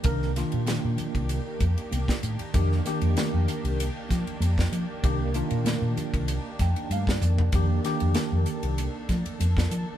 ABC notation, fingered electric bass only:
X:1
M:4/4
L:1/16
Q:1/4=96
K:Fmix
V:1 name="Fingered electric bass" clef=bass
C,,3 B,,2 B,, z C,,2 z F,, z C,, z A,, z | F,,2 z F,, z F,, z C,,2 z F, z F,,2 F, z | C,,3 B,,2 B,, z C,,2 z F,, z G,,2 F,,2 | F,,2 z F,, z F,, z C,,2 z F, z F,,2 F, z |]